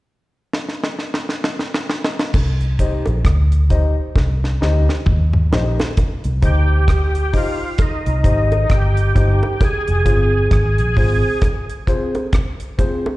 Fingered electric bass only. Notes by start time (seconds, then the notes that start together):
2.34 C2
3.07 A#1
3.25 D2
4.16 C2
4.62 D2
5.07 D#2
5.52 A#1
6.25 C2
6.43 D2
8.07 C2
8.24 G#1
8.70 G1
9.16 G1
9.88 F1
10.06 G1
10.52 G#1
10.79 A#1
10.97 G#1